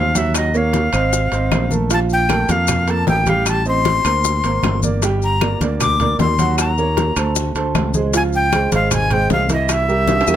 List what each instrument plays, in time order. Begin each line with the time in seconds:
Already playing: fingered electric bass D#2
0.00 flute F5
0.15 grand piano F#3 F#4 F#5, flute E5, high conga, high timbale, maracas
0.34 flute D#5, high bongo, high timbale, claves, maracas
0.54 grand piano A#3 A#4 C#5, flute F5, high conga, maracas
0.73 high bongo, high conga, high timbale, low timbale, maracas
0.93 fingered electric bass G#1, grand piano C4 C5 D#5, high bongo, high conga, high timbale, claves, maracas
1.13 high bongo, high conga, maracas
1.32 fingered electric bass G#1, grand piano C4 C5 D#5, high bongo, high conga, high timbale, maracas
1.52 fingered electric bass A#1, high bongo, low bongo, high conga, high timbale, low timbale, claves, maracas
1.71 grand piano A3 A4 A#4, high bongo, high conga, maracas
1.90 grand piano F3 F4 F5, flute A5, high bongo, high conga, high timbale, maracas
2.10 flute G5, high conga, maracas
2.29 grand piano A3 A4 A#4, high bongo, high conga, high timbale, low timbale, claves, maracas
2.49 fingered electric bass F2, grand piano A#3 A4 A#4, flute F5, high conga, high timbale, maracas
2.68 high bongo, high conga, low conga, high timbale, claves, maracas
2.87 grand piano A#3 A4 A#4, flute A5, high conga, high timbale, maracas
3.07 fingered electric bass A1, flute G5, high bongo, low bongo, high conga, low timbale, maracas
3.26 grand piano G3 G4 G5, flute F5, high conga, high timbale, maracas
3.46 flute A5, high bongo, high conga, high timbale, claves, maracas
3.66 grand piano C4 C5 D#5, flute C6, high conga, maracas
3.85 high bongo, high conga, high timbale, low timbale, maracas
4.05 fingered electric bass D2, grand piano A#3 A#4 C5, high bongo, high conga, high timbale, claves, maracas
4.24 high bongo, high conga, maracas
4.44 fingered electric bass G#1, grand piano A#3 A#4 C5, high bongo, high conga, high timbale, maracas
4.63 fingered electric bass G1, high bongo, low bongo, high conga, high timbale, low timbale, claves, maracas
4.83 grand piano A#3 A#4 D5, high bongo, high conga, maracas
5.02 grand piano G3 G4 G5, high bongo, high conga, high timbale, maracas
5.22 flute A#5, high conga, maracas
5.41 grand piano A#3 A#4 D5, high bongo, high conga, high timbale, low timbale, claves, maracas
5.61 fingered electric bass D2, grand piano A#3 A#4 D5, high conga, high timbale, maracas
5.80 flute D6, high bongo, high conga, low conga, high timbale, claves, maracas
6.00 grand piano A#3 A#4 D5, high conga, low conga, high timbale, maracas
6.19 fingered electric bass D#2, flute C6, high bongo, low bongo, high conga, low timbale, maracas
6.39 grand piano F#3 F#4 F#5, high conga, high timbale, maracas
6.58 flute A#5, high bongo, high conga, high timbale, claves, maracas
6.78 grand piano A#3 A#4 C#5, high conga, maracas
6.97 high bongo, high conga, high timbale, low timbale, maracas
7.16 fingered electric bass D2, grand piano A3 A4 C5, high bongo, high conga, high timbale, claves, maracas
7.36 high bongo, high conga, maracas
7.55 fingered electric bass D2, grand piano A3 A4 C5, high bongo, high conga, high timbale, maracas
7.75 fingered electric bass C#2, high bongo, low bongo, high conga, high timbale, low timbale, claves, maracas
7.94 grand piano G#3 G#4 C5, high bongo, high conga, maracas
8.13 grand piano F3 F4 F5, flute G#5, high bongo, high conga, high timbale, maracas
8.33 flute G5, high conga, maracas
8.52 grand piano G#3 G#4 C5, high bongo, high conga, high timbale, low timbale, claves, maracas
8.72 fingered electric bass G#1, grand piano G#3 G#4 C5, flute F5, high conga, high timbale, maracas
8.91 flute G#5, high bongo, high conga, low conga, high timbale, claves, maracas
9.10 grand piano G#3 G#4 C5, flute G5, high conga, low conga, high timbale, maracas
9.30 fingered electric bass C2, flute F5, high bongo, low bongo, high conga, low timbale, maracas
9.49 grand piano E3 E4 E5, flute D#5, high conga, high timbale, maracas
9.69 flute E5, high bongo, high conga, high timbale, claves, maracas
9.88 grand piano G3 G4 A#4, high conga, maracas
10.07 high bongo, high conga, high timbale, maracas
10.21 high timbale
10.27 fingered electric bass E2, grand piano G3 G4 A#4, high bongo, high conga, claves, maracas